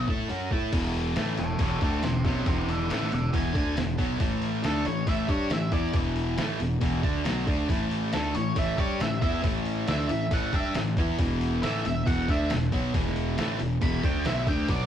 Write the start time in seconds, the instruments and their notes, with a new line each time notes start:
0.08 fingered electric bass A2, distorted electric guitar A3 E4 A4, kick
0.29 fingered electric bass F#2, distorted electric guitar F#3 C#4 F#4, open hi-hat
0.51 fingered electric bass A2, distorted electric guitar A3 E4 A4, kick
0.72 fingered electric bass E1, distorted electric guitar E2 B2 E3, kick, open hi-hat, crash
0.94 open hi-hat
1.16 fingered electric bass A1, distorted electric guitar A2 E3 A3, snare, open hi-hat
1.37 fingered electric bass E1, distorted electric guitar E2 B2, lead electric guitar E4 C#5, open hi-hat
1.59 fingered electric bass E1, distorted electric guitar E2 B2 E3, lead electric guitar E4 C#5, kick, open hi-hat
1.81 fingered electric bass D2, distorted electric guitar D3 A3 D4, lead electric guitar E4 C#5, kick, open hi-hat
2.03 fingered electric bass E1, distorted electric guitar E2 B2, lead electric guitar G4 E5, snare, open hi-hat
2.24 fingered electric bass B1, distorted electric guitar B2 F#3 B3, lead electric guitar G4 E5, kick, open hi-hat
2.46 fingered electric bass E1, distorted electric guitar E2 B2 E3, lead electric guitar G4 E5, kick, open hi-hat
2.69 lead electric guitar D5 F#5, open hi-hat
2.90 fingered electric bass A1, distorted electric guitar A2 E3 A3, lead electric guitar D5 F#5, snare, open hi-hat
3.02 snare
3.12 fingered electric bass E1, distorted electric guitar E2 B2, lead electric guitar D5 F#5, open hi-hat
3.33 fingered electric bass E1, distorted electric guitar E2 B2 E3, lead electric guitar G#5, kick, open hi-hat
3.54 fingered electric bass D2, distorted electric guitar D3 A3 D4, kick, open hi-hat
3.76 fingered electric bass E1, distorted electric guitar E2 B2, snare, open hi-hat
3.98 fingered electric bass B1, distorted electric guitar B2 F#3 B3, kick, open hi-hat
4.19 fingered electric bass A1, distorted electric guitar A2 E3 A3, kick, open hi-hat
4.42 open hi-hat
4.63 fingered electric bass D2, distorted electric guitar D3 A3 D4, lead electric guitar A4, snare, open hi-hat
4.85 fingered electric bass A1, distorted electric guitar A2 E3, lead electric guitar C#5, open hi-hat
5.07 fingered electric bass A1, distorted electric guitar A2 E3 A3, lead electric guitar E5, kick, open hi-hat
5.28 fingered electric bass G2, distorted electric guitar G3 D4 G4, lead electric guitar C#5, kick, open hi-hat
5.50 fingered electric bass A1, distorted electric guitar A2 E3, lead electric guitar E5, snare, open hi-hat
5.72 fingered electric bass E2, distorted electric guitar E3 B3 E4, lead electric guitar D5, kick, open hi-hat
5.93 fingered electric bass E1, distorted electric guitar E2 B2 E3, kick, open hi-hat
6.16 open hi-hat
6.37 fingered electric bass A1, distorted electric guitar A2 E3 A3, snare, open hi-hat
6.50 snare
6.60 fingered electric bass E1, distorted electric guitar E2 B2, open hi-hat
6.81 fingered electric bass E1, distorted electric guitar E2 B2 E3, kick, open hi-hat
7.03 fingered electric bass D2, distorted electric guitar D3 A3 D4, kick, open hi-hat
7.24 fingered electric bass B1, distorted electric guitar B2 F#3 B3, snare, open hi-hat
7.46 fingered electric bass D2, distorted electric guitar D3 A3 D4, kick, open hi-hat
7.69 fingered electric bass A1, distorted electric guitar A2 E3 A3, kick, open hi-hat
7.91 open hi-hat
8.13 fingered electric bass D2, distorted electric guitar D3 A3 D4, lead electric guitar A4, snare, open hi-hat
8.34 fingered electric bass A1, distorted electric guitar A2 E3, lead electric guitar C#5, open hi-hat
8.55 fingered electric bass A1, distorted electric guitar A2 E3 A3, lead electric guitar E5, kick, open hi-hat
8.77 fingered electric bass G2, distorted electric guitar G3 D4 G4, lead electric guitar C#5, kick, open hi-hat
9.00 fingered electric bass A1, distorted electric guitar A2 E3, lead electric guitar E5, snare, open hi-hat
9.21 fingered electric bass E2, distorted electric guitar E3 B3 E4, lead electric guitar E5, kick, open hi-hat
9.43 fingered electric bass A1, distorted electric guitar A2 E3 A3, kick, open hi-hat
9.66 open hi-hat
9.88 fingered electric bass D2, distorted electric guitar D3 A3 D4, lead electric guitar E5, snare, open hi-hat
10.09 fingered electric bass A1, distorted electric guitar A2 E3, lead electric guitar E5, open hi-hat
10.31 fingered electric bass A1, distorted electric guitar A2 E3 A3, lead electric guitar F#5, kick, open hi-hat
10.53 fingered electric bass G2, distorted electric guitar G3 D4 G4, lead electric guitar E5, kick, open hi-hat
10.75 fingered electric bass A1, distorted electric guitar A2 E3, snare, open hi-hat
10.97 fingered electric bass E2, distorted electric guitar E3 B3 E4, kick, open hi-hat
11.19 fingered electric bass E1, distorted electric guitar E2 B2 E3, kick, open hi-hat
11.41 open hi-hat
11.63 fingered electric bass A1, distorted electric guitar A2 E3 A3, lead electric guitar E5, snare, open hi-hat
11.85 fingered electric bass E1, distorted electric guitar E2 B2, lead electric guitar E5, open hi-hat
12.06 fingered electric bass E1, distorted electric guitar E2 B2 E3, lead electric guitar F#5, kick, open hi-hat
12.28 fingered electric bass D2, distorted electric guitar D3 A3 D4, lead electric guitar E5, kick, open hi-hat
12.50 fingered electric bass E1, distorted electric guitar E2 B2, snare, open hi-hat
12.72 fingered electric bass B1, distorted electric guitar B2 F#3 B3, kick, open hi-hat
12.94 fingered electric bass E1, distorted electric guitar E2 B2 E3, kick, open hi-hat
13.07 snare
13.16 open hi-hat
13.37 fingered electric bass A1, distorted electric guitar A2 E3 A3, snare, open hi-hat
13.59 fingered electric bass E1, distorted electric guitar E2 B2, open hi-hat
13.81 fingered electric bass E1, distorted electric guitar E2 B2 E3, lead electric guitar B5, kick, open hi-hat
14.03 fingered electric bass D2, distorted electric guitar D3 A3 D4, lead electric guitar G5, kick, open hi-hat
14.25 fingered electric bass B1, distorted electric guitar B2 F#3 B3, lead electric guitar E5, snare, open hi-hat
14.47 fingered electric bass D2, distorted electric guitar D3 A3 D4, lead electric guitar G5, kick, open hi-hat
14.68 fingered electric bass B1, distorted electric guitar B2 F#3 B3, lead electric guitar D5, kick, open hi-hat